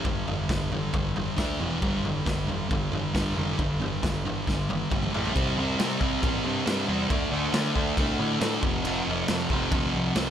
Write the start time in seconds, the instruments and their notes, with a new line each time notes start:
0.04 picked electric bass G1, distorted electric guitar G2 D3, kick, floor tom
0.28 picked electric bass G1, distorted electric guitar G2 D3, floor tom
0.49 picked electric bass G1, distorted electric guitar G2 D3, kick, snare, floor tom
0.70 picked electric bass G1, distorted electric guitar G2 D3, floor tom
0.93 picked electric bass G1, distorted electric guitar G2 D3, kick, floor tom
1.16 distorted electric guitar G2 D3, floor tom
1.37 picked electric bass D2, distorted electric guitar D3 A3 D4, kick, snare, floor tom
1.60 picked electric bass E1, distorted electric guitar E2 B2 E3, floor tom
1.81 picked electric bass G1, distorted electric guitar G2 D3 G3, kick, floor tom
2.03 picked electric bass G1, distorted electric guitar G2 D3, floor tom
2.26 picked electric bass G1, distorted electric guitar G2 D3, kick, snare, floor tom
2.48 picked electric bass G1, distorted electric guitar G2 D3, floor tom
2.69 picked electric bass G1, distorted electric guitar G2 D3, kick, floor tom
2.91 picked electric bass G1, distorted electric guitar G2 D3, floor tom
3.14 picked electric bass G1, distorted electric guitar G2 D3 G3, kick, snare, floor tom
3.35 picked electric bass F1, distorted electric guitar G2 D3 G3, floor tom
3.59 picked electric bass G1, distorted electric guitar G2 D3, kick, floor tom
3.80 picked electric bass G1, distorted electric guitar G2 D3, floor tom
4.02 picked electric bass G1, distorted electric guitar G2 D3, kick, snare, floor tom
4.25 picked electric bass G1, distorted electric guitar G2 D3, floor tom
4.47 picked electric bass G1, distorted electric guitar G2 D3, kick, snare
4.69 distorted electric guitar G2 D3, high tom
4.90 picked electric bass G1, distorted electric guitar G2 D3 G3, kick, mid tom
5.03 mid tom
5.12 picked electric bass A1, distorted electric guitar A2 E3 A3, floor tom
5.25 floor tom
5.34 picked electric bass C2, distorted electric guitar C3 G3 C4, kick, crash
5.57 picked electric bass C2, distorted electric guitar C3 G3 C4
5.79 distorted electric guitar C3 G3 C4, picked electric bass C3, snare, crash
5.99 picked electric bass C2, distorted electric guitar C3 G3 C4, kick
6.22 picked electric bass A1, distorted electric guitar C3 G3 C4, kick, crash
6.44 picked electric bass G2, distorted electric guitar C3 G3 C4
6.66 picked electric bass G2, distorted electric guitar C3 G3 C4, snare, crash
6.87 picked electric bass E2, distorted electric guitar C3 G3 C4
7.10 picked electric bass D2, distorted electric guitar D3 A3 D4, kick, crash
7.32 picked electric bass D2, distorted electric guitar D3 A3 D4
7.53 distorted electric guitar D3 A3 D4, picked electric bass D3, snare, crash
7.75 picked electric bass D2, distorted electric guitar D3 A3 D4, kick
7.97 picked electric bass C2, distorted electric guitar D3 A3 D4, kick, crash
8.19 picked electric bass A2, distorted electric guitar D3 A3 D4
8.40 picked electric bass A2, distorted electric guitar D3 A3 D4, snare, crash
8.62 picked electric bass F1, distorted electric guitar F2 C3 F3, kick
8.84 picked electric bass F1, distorted electric guitar F2 C3 F3, crash
9.07 picked electric bass F1, distorted electric guitar F2 C3 F3
9.28 picked electric bass F2, distorted electric guitar F2 C3 F3, snare, crash
9.50 picked electric bass F1, distorted electric guitar F2 C3 F3, kick
9.71 picked electric bass D2, distorted electric guitar F2 C3, kick, crash
9.75 distorted electric guitar F3
9.94 picked electric bass C2, distorted electric guitar F2 C3 F3
10.15 picked electric bass C2, distorted electric guitar F2 C3 F3, snare, crash